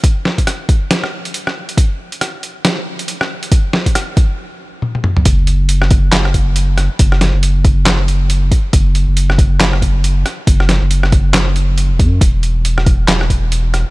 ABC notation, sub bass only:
X:1
M:4/4
L:1/16
Q:"Swing 16ths" 1/4=138
K:Emix
V:1 name="Sub bass" clef=bass
z16 | z16 | z16 | F,,,8 F,,,6- F,,, z |
F,,,3 F,,,8- F,,,3 z2 | F,,,3 F,,,8- F,,,3 z2 | F,,,3 F,,,8- F,,,2 E,,, F,,2 | E,,,8 E,,,6- E,,, z |]